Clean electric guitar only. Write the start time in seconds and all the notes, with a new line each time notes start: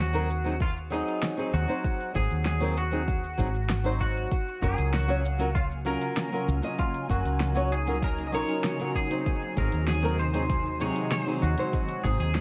0.00 F#4
0.62 F4
0.92 D#4
1.54 F#4
2.16 G#4
2.47 G#4
2.78 F#4
4.01 F#4
4.63 G#4
4.93 F#4
5.55 F4
5.86 A#4
6.79 F4
7.11 F#4
7.72 G#4
8.04 A#4
8.27 D#5
8.35 C#5
8.96 G#4
9.58 A#4
9.89 G#4
10.19 C5
10.81 C#5
11.12 C5
11.42 F#4
12.04 G#4
12.20 G#4